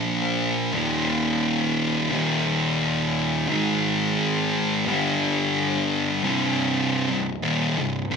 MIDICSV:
0, 0, Header, 1, 2, 480
1, 0, Start_track
1, 0, Key_signature, -3, "minor"
1, 0, Tempo, 686499
1, 520, Time_signature, 4, 2, 24, 8
1, 5708, End_track
2, 0, Start_track
2, 0, Title_t, "Distorted electric guitar"
2, 0, Program_c, 0, 30
2, 0, Note_on_c, 0, 46, 85
2, 0, Note_on_c, 0, 53, 89
2, 0, Note_on_c, 0, 58, 86
2, 500, Note_off_c, 0, 46, 0
2, 505, Note_off_c, 0, 53, 0
2, 508, Note_on_c, 0, 39, 93
2, 509, Note_off_c, 0, 58, 0
2, 519, Note_on_c, 0, 46, 93
2, 527, Note_on_c, 0, 51, 103
2, 1459, Note_off_c, 0, 39, 0
2, 1464, Note_off_c, 0, 46, 0
2, 1468, Note_off_c, 0, 51, 0
2, 1470, Note_on_c, 0, 39, 82
2, 1480, Note_on_c, 0, 46, 86
2, 1488, Note_on_c, 0, 51, 86
2, 2420, Note_off_c, 0, 39, 0
2, 2425, Note_off_c, 0, 46, 0
2, 2429, Note_off_c, 0, 51, 0
2, 2431, Note_on_c, 0, 44, 87
2, 2443, Note_on_c, 0, 51, 102
2, 2449, Note_on_c, 0, 56, 107
2, 3380, Note_off_c, 0, 44, 0
2, 3386, Note_off_c, 0, 51, 0
2, 3389, Note_off_c, 0, 56, 0
2, 3395, Note_on_c, 0, 43, 94
2, 3405, Note_on_c, 0, 50, 110
2, 3414, Note_on_c, 0, 55, 100
2, 4342, Note_off_c, 0, 43, 0
2, 4347, Note_off_c, 0, 50, 0
2, 4352, Note_off_c, 0, 55, 0
2, 4357, Note_on_c, 0, 36, 100
2, 4361, Note_on_c, 0, 43, 94
2, 4363, Note_on_c, 0, 48, 105
2, 4948, Note_off_c, 0, 36, 0
2, 4949, Note_off_c, 0, 43, 0
2, 4953, Note_off_c, 0, 48, 0
2, 4956, Note_on_c, 0, 36, 64
2, 4957, Note_on_c, 0, 43, 75
2, 5149, Note_off_c, 0, 36, 0
2, 5150, Note_off_c, 0, 43, 0
2, 5190, Note_on_c, 0, 39, 90
2, 5196, Note_on_c, 0, 46, 99
2, 5198, Note_on_c, 0, 51, 104
2, 5427, Note_off_c, 0, 39, 0
2, 5430, Note_off_c, 0, 46, 0
2, 5431, Note_off_c, 0, 51, 0
2, 5433, Note_on_c, 0, 36, 69
2, 5438, Note_on_c, 0, 43, 71
2, 5628, Note_off_c, 0, 36, 0
2, 5630, Note_off_c, 0, 43, 0
2, 5668, Note_on_c, 0, 41, 94
2, 5674, Note_on_c, 0, 48, 112
2, 5708, Note_off_c, 0, 41, 0
2, 5708, Note_off_c, 0, 48, 0
2, 5708, End_track
0, 0, End_of_file